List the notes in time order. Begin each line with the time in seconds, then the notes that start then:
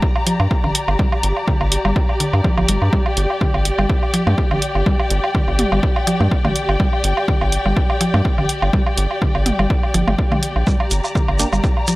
Already playing: G4 D5 A#5
0.02 kick
0.16 low woodblock
0.27 F3, closed hi-hat
0.40 G2, low woodblock
0.51 kick
0.64 A1 D3, low woodblock
0.75 closed hi-hat
0.88 G1, low woodblock
0.99 G3, kick
1.12 low woodblock
1.23 G1, closed hi-hat
1.37 low woodblock
1.48 D3, kick
1.61 G1, low woodblock
1.72 closed hi-hat
1.85 G1 G3, low woodblock
1.96 kick
2.09 low woodblock
2.20 D3, closed hi-hat
2.33 G2, low woodblock
2.44 F3, kick
2.57 G1 F3, low woodblock
2.68 G1 G3, closed hi-hat
2.82 G2, low woodblock
2.93 G3, kick
3.06 G5, low woodblock
3.17 G1, closed hi-hat
3.30 low woodblock
3.41 D3, kick
3.54 G1, low woodblock
3.65 closed hi-hat
3.78 G1 G3, low woodblock
3.90 kick
4.03 low woodblock
4.14 F3, closed hi-hat
4.27 G2, mid tom, low woodblock
4.38 kick
4.51 A1 D3, low woodblock
4.62 closed hi-hat
4.75 G1, low woodblock
4.86 G3, kick
5.00 low woodblock
5.10 G1, closed hi-hat
5.24 low woodblock
5.35 D3, kick
5.48 G1, low woodblock
5.59 closed hi-hat, mid tom
5.72 G1 G3, low woodblock
5.83 kick
5.96 low woodblock
6.07 F3, closed hi-hat
6.20 G2, mid tom, low woodblock
6.31 kick
6.45 A1 D3, mid tom, low woodblock
6.56 closed hi-hat
6.69 G1, low woodblock
6.80 G3, kick
6.93 low woodblock
7.04 G1, closed hi-hat
7.17 low woodblock
7.28 D3, kick
7.41 G1, low woodblock
7.52 closed hi-hat
7.66 G1 G3, low woodblock
7.77 kick
7.90 low woodblock
8.01 F3, closed hi-hat
8.14 G2, mid tom, low woodblock
8.25 kick
8.38 A1 D3, low woodblock
8.49 closed hi-hat
8.62 G1, low woodblock
8.73 G3, kick
8.87 low woodblock
8.98 G1, closed hi-hat
9.11 low woodblock
9.22 D3, kick
9.35 G1, low woodblock
9.46 closed hi-hat, mid tom
9.59 G1 G3, low woodblock
9.70 kick
9.83 low woodblock
9.94 G1 F3, closed hi-hat
10.07 G1, mid tom, low woodblock
10.19 kick
10.32 D3, mid tom, low woodblock
10.43 closed hi-hat
10.56 A#1, low woodblock
10.67 G3, kick, shekere
10.80 A#5, low woodblock
10.91 G1, closed hi-hat, shekere
11.04 low woodblock, shekere
11.15 D3, kick, shekere
11.28 G1, low woodblock
11.39 A#3 D4 G4, closed hi-hat, shekere
11.53 G1 G3, low woodblock, shekere
11.64 kick, shekere
11.77 low woodblock
11.87 F3, closed hi-hat, shekere